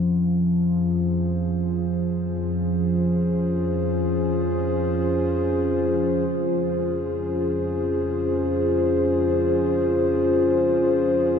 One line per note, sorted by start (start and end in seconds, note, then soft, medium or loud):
0.00 6.27 F2 medium
0.00 6.27 F3 medium
0.00 6.30 C#4 medium
0.00 11.39 C#4 medium
0.20 11.39 F4 medium
0.54 11.39 G#4 medium
0.93 11.39 C5 medium
6.29 11.39 F2 medium
6.29 11.39 F3 medium